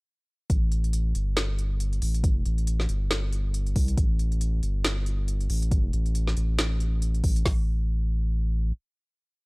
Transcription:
0.50 sub bass A1, kick, closed hi-hat
0.72 closed hi-hat
0.84 closed hi-hat
0.93 closed hi-hat
1.15 sub bass G1, closed hi-hat
1.37 snare, closed hi-hat
1.59 closed hi-hat
1.80 closed hi-hat
1.93 closed hi-hat
2.02 sub bass A1, open hi-hat
2.14 closed hi-hat
2.24 kick, closed hi-hat
2.46 sub bass A1, closed hi-hat
2.58 closed hi-hat
2.67 closed hi-hat
2.80 snare
2.89 sub bass G1, closed hi-hat
3.11 snare, closed hi-hat
3.33 closed hi-hat
3.54 closed hi-hat
3.67 closed hi-hat
3.76 sub bass C2, kick, open hi-hat
3.88 closed hi-hat
3.97 sub bass A1, kick, closed hi-hat
4.19 closed hi-hat
4.32 closed hi-hat
4.41 closed hi-hat
4.63 sub bass G1, closed hi-hat
4.85 snare, closed hi-hat
5.06 closed hi-hat
5.28 closed hi-hat
5.41 closed hi-hat
5.50 sub bass A1, open hi-hat
5.62 closed hi-hat
5.71 kick, closed hi-hat
5.93 sub bass A1, closed hi-hat
6.06 closed hi-hat
6.15 closed hi-hat
6.28 snare
6.37 sub bass A1, closed hi-hat
6.59 snare, closed hi-hat
6.80 closed hi-hat
7.02 closed hi-hat
7.14 closed hi-hat
7.24 sub bass A1, kick, open hi-hat
7.36 closed hi-hat
7.46 sub bass A1, kick, snare, open hi-hat

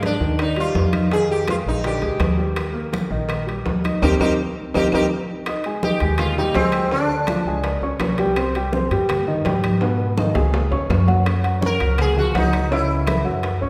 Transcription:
Already playing: upright bass G#2, grand piano G#3 G#4
0.03 sitar D4, high bongo, high conga, high timbale
0.20 upright bass D#2, grand piano D#3 D#4, high conga
0.39 sitar D#4, high bongo, high conga, high timbale, claves
0.56 grand piano G3 G4, sitar F4, high conga, high timbale
0.75 upright bass F2, high bongo, low bongo, high conga
0.93 grand piano D#4 D#5, high conga, high timbale, claves
1.11 grand piano D#3 D#4, sitar G#4, high bongo, high conga, high timbale
1.30 sitar G4, high bongo, high conga
1.48 grand piano G#3 G#4, sitar F4, high bongo, high conga, high timbale, claves
1.66 upright bass A#1, sitar D#4, high bongo, high conga
1.84 grand piano D3 D4, sitar G4, high bongo, high conga, high timbale
2.02 upright bass D2, grand piano G#3 G#4, high conga, high timbale
2.20 upright bass D#2, high bongo, low bongo, high conga, high timbale, low timbale, claves
2.37 grand piano G3 G4, high bongo
2.56 high bongo, high conga, high timbale, claves
2.73 grand piano A#3 A#4, high conga
2.93 high bongo, high conga, high timbale
3.10 upright bass A#1, grand piano D#3 D#4, high conga
3.29 high bongo, high conga, high timbale, claves
3.46 grand piano G3 G4, high conga, high timbale
3.66 upright bass D#2, high bongo, low bongo, high conga
3.84 grand piano D#4 D#5, high conga, high timbale, claves
4.02 upright bass D#2, grand piano C4 D#4 G4, sitar D#4 G4 A#4, low bongo, high conga, high timbale, claves
4.20 upright bass D#2, grand piano C4 D#4 G4, sitar D#4 G4 A#4, low bongo, high conga, high timbale, claves
4.74 upright bass D#2, grand piano C4 D#4 G4, sitar D#4 G4 A#4, low bongo, high conga, high timbale, claves
4.92 upright bass D#2, grand piano C4 D#4 G4, sitar D#4 G4 A#4, low bongo, high conga, high timbale, claves
5.46 grand piano D#4 D#5 D#6, high bongo, high conga, high timbale, claves
5.64 grand piano G#3 G#4 G#5, high conga, high timbale
5.83 grand piano D#4 D#5 D#6, sitar G4, high bongo, high conga, low timbale
6.00 upright bass D#2, grand piano G#3 G#4 G#5, high conga, high timbale
6.18 sitar F4, high bongo, high conga, low conga, high timbale, claves
6.38 grand piano G3 G4 G5, sitar D#4, high conga, low conga
6.54 upright bass D2, grand piano G#3 G#4 G#5, sitar C4, high bongo, low bongo, high conga, high timbale, low timbale
6.72 high timbale, claves
6.91 grand piano D3 D4 D5, sitar D4, high bongo, high conga
7.09 high bongo, high conga
7.27 grand piano F3 F4 F5, high bongo, high conga, high timbale, low timbale, claves
7.45 upright bass C#2, grand piano G#3 G#4 G#5, high conga
7.64 high bongo, high conga, high timbale
7.82 upright bass C#2, grand piano C#4 C#5 C#6, high bongo, high conga
8.00 upright bass C2, high bongo, low bongo, high conga, high timbale, low timbale, claves
8.18 grand piano G3 G4 G5, high bongo, high conga, high timbale
8.36 grand piano C4 C5 C6, high bongo, high conga, high timbale, claves
8.55 grand piano G3 G4 G5, high conga, high timbale
8.72 grand piano C4 C5 C6, high bongo, high conga, low timbale
8.91 upright bass G2, grand piano G3 G4 G5, high conga, high timbale
9.09 high bongo, high conga, low conga, high timbale, claves
9.27 grand piano D#3 D#4 D#5, high conga
9.45 upright bass G#2, grand piano G3 G4 G5, high bongo, low bongo, high conga, high timbale, low timbale
9.64 high conga, high timbale, claves
9.81 grand piano B2 B3 B4, high bongo, high conga, high timbale
9.99 high bongo, high conga
10.17 grand piano D#3 D#4 D#5, high bongo, high conga, high timbale, claves
10.35 upright bass C#2, grand piano G#3 G#4 G#5, high conga, low timbale
10.54 high bongo, high conga, low timbale
10.71 upright bass D#2, grand piano C#4 C#5 C#6, high bongo, high conga, low timbale
10.89 upright bass F#2, high bongo, low bongo, high conga, low timbale, claves
11.07 grand piano F#3 F#4 F#5, high bongo, high conga, low timbale
11.25 grand piano C#4 C#5 C#6, high bongo, high conga, high timbale, claves
11.43 grand piano F#3 F#4 F#5, high conga, high timbale
11.61 grand piano C#4 C#5 C#6, high bongo, high conga, low timbale
11.66 sitar A#4
11.79 upright bass C#2, grand piano F#3 F#4 F#5, high conga, high timbale
11.98 sitar G#4, high bongo, high conga, low conga, high timbale, claves
12.16 grand piano F3 F4 F5, sitar F#4, high conga, low conga
12.34 upright bass C#2, grand piano F#3 F#4 F#5, sitar D#4, high bongo, low bongo, high conga, high timbale, low timbale
12.53 high timbale, claves
12.71 grand piano C#3 C#4 C#5, sitar E4, high bongo, high conga
12.90 high bongo, high conga
13.07 grand piano E3 E4 E5, high bongo, high conga, high timbale, low timbale, claves
13.24 upright bass F#2, grand piano F#3 F#4 F#5, high conga
13.43 high bongo, high conga, high timbale
13.61 upright bass C2, grand piano C#4 C#5 C#6, high bongo, high conga

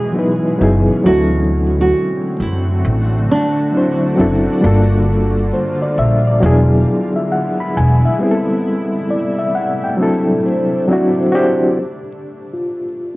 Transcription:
Already playing: ambient pad B2 E3 G#3 C#4, nylon-string guitar G#4
0.13 reed electric piano F#3 B3 D#4
0.17 reed electric piano E4 B4
0.58 upright bass F#1, reed electric piano F#3 B3 D#4 E4
0.63 reed electric piano G#4
1.04 upright bass D2, ambient pad D3 A3 C4 F#4, reed electric piano F#3 C4 D4, nylon-string guitar F#4
1.08 reed electric piano E4 A4
1.81 nylon-string guitar F#4
2.40 upright bass F#2, nylon-string guitar E4
2.85 upright bass A1, ambient pad D4
3.31 nylon-string guitar D4
3.72 reed electric piano F#3 C4 D4
3.76 reed electric piano E4 C5
4.15 upright bass F#1, reed electric piano F#3 C4 D4
4.20 reed electric piano E4 A4
4.61 upright bass G1, reed electric piano G3 A#3 D4 F4, ambient pad G3 A#3
4.65 ambient pad F4, reed electric piano A4
5.53 reed electric piano C5
5.82 reed electric piano D5
5.98 upright bass A#1, reed electric piano E5
6.27 reed electric piano D5
6.40 upright bass E1, reed electric piano F#3 B3 D4, ambient pad G#3 B3 E4
6.45 reed electric piano E4 G#4
7.16 reed electric piano E5
7.32 reed electric piano F#5
7.60 reed electric piano B5
7.77 upright bass E1, reed electric piano G#5
8.05 reed electric piano E5
8.19 ambient pad C3 G3 A3, reed electric piano G3 B3 C4
8.23 reed electric piano E4 G#4
8.31 reed electric piano A4
9.11 reed electric piano D5
9.39 reed electric piano E5
9.55 reed electric piano F#5
9.84 reed electric piano G5
9.97 ambient pad D3 D4, reed electric piano F#3 C4 D4
10.01 reed electric piano E4 A4
10.28 vibraphone A4
10.45 vibraphone C5
10.87 reed electric piano F#3 C4 D4, vibraphone D5
10.91 reed electric piano E4 F#4
11.19 vibraphone C5
11.32 reed electric piano C4 D4 F#4 G4
11.36 reed electric piano E4 C5
12.53 reed electric piano F4

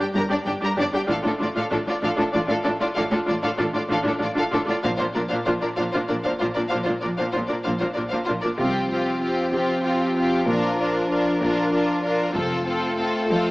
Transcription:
0.00 violin section G4 G5
0.14 double bass section G1, cello section G2, viola section D4 G4, violin section A#4 A#5
0.29 cello section G2, viola section D4 G4, violin section D4 D5
0.45 double bass section G1, cello section G2, viola section D4 G4, violin section G4 G5
0.61 cello section G2, viola section D4 G4, violin section A#4 A#5
0.76 double bass section G1, cello section G2, viola section D4 G4
0.80 violin section D4 D5
0.93 cello section G2, viola section D4 G4, violin section G4 G5
1.07 double bass section A1, cello section A2, viola section D4 F4, violin section A4 F5, taiko
1.22 cello section A2, viola section D4 F4
1.27 violin section D4 A4
1.39 double bass section A1, cello section A2, viola section D4 F4, violin section F4
1.43 violin section D5
1.55 cello section A2, viola section D4 F4, violin section A4 F5
1.70 double bass section A1, cello section A2, viola section D4 F4, violin section D4 A4
1.87 cello section A2, viola section D4 F4, violin section F4 D5
2.02 double bass section A1, cello section A2, viola section D4 F4, violin section A4 F5
2.16 cello section A2, viola section D4 F4, violin section A4
2.20 violin section D4
2.32 double bass section A1, cello section A2, viola section D4 F4, violin section F4 D5
2.47 cello section A2, viola section D4 F4, violin section A4 F5
2.64 double bass section A1, cello section A2, viola section D4 F4, violin section D4 A4
2.81 cello section A2, viola section D4 F4, violin section F4 D5
2.95 double bass section A1, cello section A2, viola section D4 F4, violin section A4 F5
3.11 cello section A2, viola section D4 F4, violin section D4 A4
3.25 double bass section A1, cello section A2, viola section D4 F4, violin section F4 D5
3.42 cello section A2, viola section D4 F4, violin section A4 F5
3.57 double bass section A1, cello section A2, viola section D4 F4, violin section D4 A4
3.73 cello section A2, viola section D4 F4, violin section F4 D5
3.89 double bass section A1, cello section A2, viola section D4 F4, violin section A4 F5
4.03 cello section A2, viola section D4 F4
4.08 violin section D4 A4
4.18 cello section A2, viola section D4 F4
4.23 double bass section A1, violin section F4 D5
4.35 cello section A2, viola section D4 F4, violin section A4 F5
4.51 double bass section A1, cello section A2, viola section D4 F4, violin section D4 A4
4.66 cello section A2, viola section D4 F4, violin section F4 D5
4.83 double bass section A#1, cello section A#2, viola section D4 F4, violin section C5 F5, taiko
4.98 cello section A#2, viola section D4 F4, violin section F4 C5
5.15 double bass section A#1, cello section A#2, viola section D4 F4, violin section A#4 D5
5.29 cello section A#2, viola section D4 F4, violin section C5 F5
5.46 double bass section A#1, cello section A#2, viola section D4 F4, violin section F4 C5
5.61 cello section A#2, viola section D4 F4, violin section A#4 D5
5.76 double bass section A#1, cello section A#2, viola section D4 F4, violin section C5 F5
5.93 cello section A#2, viola section D4 F4, violin section F4 C5
6.08 double bass section A#1, cello section A#2, viola section D4 F4, violin section A#4 D5
6.24 cello section A#2, viola section D4 F4, violin section C5 F5, taiko
6.40 double bass section A#1, cello section A#2, viola section D4 F4, violin section F4 C5
6.54 cello section A#2, viola section D4 F4, violin section A#4 D5
6.69 viola section D4 F4, violin section C5 F5
6.73 double bass section A#1, cello section A#2
6.84 viola section D4 F4, violin section F4 C5
6.89 cello section A#2
7.01 double bass section A#1, viola section D4 F4, violin section A#4 D5
7.05 cello section A#2
7.17 cello section A#2, viola section D4 F4, violin section C5 F5
7.32 double bass section A#1, viola section D4 F4, violin section F4 C5
7.37 cello section A#2
7.48 cello section A#2, viola section D4 F4, violin section A#4 D5
7.64 double bass section A#1, cello section A#2, viola section D4 F4, violin section C5 F5
7.80 cello section A#2, viola section D4 F4, violin section F4 C5
7.94 cello section A#2, viola section D4 F4, violin section A#4 D5
7.99 double bass section A#1
8.10 cello section A#2, viola section D4 F4, violin section C5 F5
8.25 cello section A#2, viola section D4 F4, violin section F4 C5
8.30 double bass section A#1
8.41 cello section A#2, viola section D4 F4, violin section A#4 D5
8.57 double bass section C2, cello section C3, french horn section F3 C4, viola section C4, violin section F4 G4, taiko
8.90 viola section C4, violin section F4 G4
9.21 viola section C4, violin section F4 G4
9.51 cello section C3, viola section C4, violin section F4 G4
9.83 viola section C4, violin section F4 G4
10.16 viola section C4, violin section F4 G4
10.47 double bass section A#1, cello section A#2, viola section D4, french horn section D4, violin section F4 A#4
10.78 viola section D4, violin section F4 A#4
11.09 viola section D4, violin section F4 A#4
11.41 cello section A#2, viola section D4, violin section F4 A#4
11.72 viola section D4, violin section F4 A#4
12.04 viola section D4, violin section F4 A#4
12.34 double bass section F1, cello section F2, french horn section A3 F4, viola section C4, violin section F4 A4, taiko
12.66 viola section C4, violin section F4 A4
12.96 viola section C4, violin section F4 A4
13.25 viola section C4, violin section F4 A4
13.30 cello section F2

